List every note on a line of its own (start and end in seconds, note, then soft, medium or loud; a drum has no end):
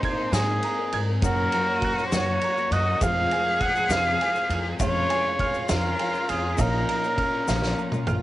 0.00 1.19 G#1 medium
0.00 1.19 G#2 medium
0.00 1.19 A#3 medium
0.00 0.19 C4 soft
0.00 0.18 D#4 soft
0.00 0.90 D#4 medium
0.00 1.20 D#4 medium
0.00 1.20 G#4 medium
0.00 0.17 A#4 soft
0.00 1.20 C5 medium
0.00 0.35 C5 medium
0.00 0.32 G#5 medium
0.00 0.62 A#5 medium
0.00 kick medium
0.00 ride medium
0.05 0.92 G#6 medium
0.18 0.31 C4 soft
0.18 0.31 D#4 soft
0.18 0.33 A#4 soft
0.32 0.56 G#2 medium
0.32 0.60 G#3 medium
0.32 0.62 C4 medium
0.32 0.62 D#4 medium
0.32 1.01 G#4 medium
0.32 0.63 A#4 medium
0.32 1.23 G#5 medium
0.32 snare medium
0.32 ride medium
0.32 shaker loud
0.62 0.77 G#3 medium
0.62 0.78 C4 medium
0.62 0.78 D#4 medium
0.62 0.77 A#4 medium
0.62 1.23 A#5 medium
0.62 ride medium
0.78 1.09 C4 soft
0.78 1.08 D#4 soft
0.78 1.07 A#4 medium
0.92 1.16 G#2 medium
0.92 1.23 G#6 medium
0.92 ride medium
1.08 1.24 C4 soft
1.08 1.24 D#4 soft
1.08 1.23 A#4 medium
1.22 2.98 F#1 medium
1.22 1.46 F#2 loud
1.22 2.97 F#2 medium
1.22 1.53 F#2 medium
1.22 1.53 C#3 medium
1.22 1.52 F#3 medium
1.22 2.98 A#3 medium
1.22 1.52 A#3 medium
1.22 2.98 C#4 medium
1.22 1.53 C#4 medium
1.22 2.68 F#4 loud
1.22 2.98 F#4 medium
1.22 1.54 F#4 medium
1.22 2.02 A#4 loud
1.22 2.98 C#5 medium
1.22 2.12 F#5 medium
1.22 kick loud
1.22 ride medium
1.22 shaker medium
1.52 1.68 F#3 medium
1.52 1.67 A#3 medium
1.52 1.66 F#4 medium
1.52 2.42 A#5 medium
1.52 ride medium
1.67 1.98 F#3 soft
1.67 1.97 A#3 soft
1.67 1.96 C#4 soft
1.67 1.95 F#4 medium
1.82 2.71 F#6 medium
1.82 kick medium
1.82 ride medium
1.97 2.10 F#3 soft
1.97 2.11 A#3 soft
1.97 2.11 C#4 medium
1.97 2.11 F#4 soft
1.97 shaker soft
2.06 2.14 C5 medium
2.11 2.41 F#2 medium
2.11 2.35 F#2 medium
2.11 2.41 C#3 medium
2.11 2.39 F#3 medium
2.11 2.40 A#3 medium
2.11 2.41 C#4 medium
2.11 2.42 F#4 medium
2.11 2.74 C#5 loud
2.11 3.02 F#5 medium
2.11 snare loud
2.11 ride medium
2.11 shaker medium
2.41 2.56 F#3 medium
2.41 2.57 A#3 medium
2.41 2.56 C#4 medium
2.41 2.55 F#4 medium
2.41 3.02 A#5 medium
2.41 ride medium
2.57 2.88 F#3 soft
2.57 2.87 A#3 soft
2.57 2.86 C#4 soft
2.57 2.85 F#4 medium
2.57 shaker soft
2.71 2.95 F#2 medium
2.71 3.03 F#4 loud
2.71 3.02 D#5 medium
2.71 3.02 F#6 medium
2.71 ride medium
2.71 shaker soft
2.86 3.02 F#3 soft
2.86 3.02 A#3 soft
2.86 3.02 C#4 soft
2.86 3.01 F#4 medium
3.01 4.76 F1 medium
3.01 3.25 F2 medium
3.01 3.31 F2 medium
3.01 4.77 F2 medium
3.01 3.32 C3 medium
3.01 3.30 F3 medium
3.01 4.76 G#3 medium
3.01 3.31 G#3 medium
3.01 4.77 C4 medium
3.01 3.32 C4 medium
3.01 4.77 F4 medium
3.01 3.33 F4 medium
3.01 4.78 G#4 loud
3.01 4.77 C5 medium
3.01 3.90 F5 medium
3.01 3.63 F5 loud
3.01 kick loud
3.01 ride medium
3.01 shaker medium
3.31 3.46 F3 medium
3.31 3.47 G#3 medium
3.31 3.46 C4 medium
3.31 3.45 F4 medium
3.31 4.20 G#5 medium
3.31 ride medium
3.46 3.77 F3 soft
3.46 3.77 G#3 soft
3.46 3.76 C4 soft
3.46 3.75 F4 medium
3.61 3.93 F#5 loud
3.61 4.50 F6 medium
3.61 kick medium
3.61 ride medium
3.76 3.90 F3 soft
3.76 3.91 G#3 soft
3.76 3.92 C4 soft
3.76 3.91 F4 medium
3.76 shaker soft
3.89 4.13 F2 medium
3.89 4.21 F2 medium
3.89 4.21 C3 medium
3.89 4.19 F3 medium
3.89 4.20 G#3 medium
3.89 4.21 C4 medium
3.89 4.21 F4 medium
3.89 4.79 F5 medium
3.89 4.58 F5 loud
3.89 snare loud
3.89 ride medium
3.89 shaker loud
4.20 4.35 F3 medium
4.20 4.36 G#3 medium
4.20 4.35 C4 medium
4.20 4.81 G#5 medium
4.20 ride soft
4.35 4.66 F3 soft
4.35 4.65 G#3 soft
4.35 4.65 C4 medium
4.35 4.63 F4 medium
4.35 shaker soft
4.49 4.73 F2 medium
4.49 4.81 F6 medium
4.49 ride medium
4.49 shaker soft
4.64 4.79 F3 soft
4.64 4.80 G#3 soft
4.64 4.80 C4 soft
4.64 4.80 F4 medium
4.79 6.55 F1 medium
4.79 5.03 F2 loud
4.79 6.55 F2 medium
4.79 5.09 F3 medium
4.79 6.55 G#3 medium
4.79 5.10 G#3 medium
4.79 6.56 C#4 medium
4.79 5.10 C#4 medium
4.79 5.35 F4 loud
4.79 6.56 F4 medium
4.79 5.11 F4 medium
4.79 5.66 C#5 loud
4.79 6.56 C#5 medium
4.79 5.68 F5 medium
4.79 kick loud
4.79 ride medium
4.79 shaker medium
5.10 5.25 F3 medium
5.10 5.25 G#3 medium
5.10 5.23 F4 medium
5.10 5.98 G#5 medium
5.10 ride medium
5.24 5.55 G#3 soft
5.24 5.54 C#4 soft
5.24 5.53 F4 medium
5.39 6.60 F4 loud
5.39 6.28 F6 medium
5.39 kick medium
5.39 ride medium
5.54 5.68 G#3 soft
5.54 5.68 C#4 soft
5.54 5.68 F4 medium
5.54 shaker soft
5.68 5.93 F2 medium
5.68 5.96 F3 medium
5.68 5.97 G#3 medium
5.68 5.98 C#4 medium
5.68 5.99 F4 medium
5.68 6.31 A#4 medium
5.68 6.58 F5 medium
5.68 snare loud
5.68 ride medium
5.68 shaker loud
5.98 6.13 F3 medium
5.98 6.13 G#3 medium
5.98 6.12 C#4 medium
5.98 6.11 F4 medium
5.98 6.59 G#5 medium
5.98 ride medium
6.12 6.44 G#3 soft
6.12 6.43 C#4 medium
6.12 6.42 F4 medium
6.12 shaker soft
6.29 6.53 F2 medium
6.29 6.63 G#4 medium
6.29 6.59 F6 medium
6.29 ride medium
6.29 shaker soft
6.43 6.59 G#3 soft
6.43 6.58 C#4 medium
6.43 6.58 F4 medium
6.57 8.22 A#1 medium
6.57 6.82 A#1 medium
6.57 6.88 A#2 medium
6.57 8.22 A#2 medium
6.57 6.86 F3 medium
6.57 8.22 A#3 medium
6.57 6.87 A#3 medium
6.57 8.22 C#4 medium
6.57 6.88 C#4 medium
6.57 7.18 D#4 medium
6.57 8.22 F4 medium
6.57 6.89 F4 medium
6.57 8.22 C#5 medium
6.57 7.47 F5 medium
6.57 kick loud
6.57 ride medium
6.57 shaker medium
6.61 8.09 A#4 medium
6.88 7.03 F3 medium
6.88 7.03 A#3 medium
6.88 7.03 C#4 medium
6.88 7.01 F4 medium
6.88 7.77 A#5 medium
6.88 ride medium
7.02 7.34 A#3 soft
7.02 7.33 C#4 soft
7.02 7.30 F4 soft
7.02 shaker soft
7.17 8.09 C#4 medium
7.17 8.06 F6 medium
7.17 kick medium
7.17 ride medium
7.32 7.47 A#3 soft
7.32 7.48 C#4 medium
7.32 7.47 F4 medium
7.48 7.71 A#1 medium
7.48 7.78 A#2 medium
7.48 7.76 F3 medium
7.48 7.77 A#3 medium
7.48 7.78 C#4 medium
7.48 7.78 F4 medium
7.48 8.22 F5 medium
7.48 snare medium
7.48 shaker medium
7.62 snare medium
7.77 7.92 F3 medium
7.77 7.93 A#3 medium
7.77 7.93 C#4 medium
7.77 7.91 F4 medium
7.77 8.22 A#5 medium
7.77 shaker soft
7.92 8.22 A#3 soft
7.92 8.22 C#4 soft
7.92 8.21 F4 medium
7.92 mid tom medium
7.92 shaker soft
8.07 8.22 A#1 medium
8.07 8.22 F4 medium
8.07 8.22 F6 medium
8.07 mid tom medium
8.07 shaker soft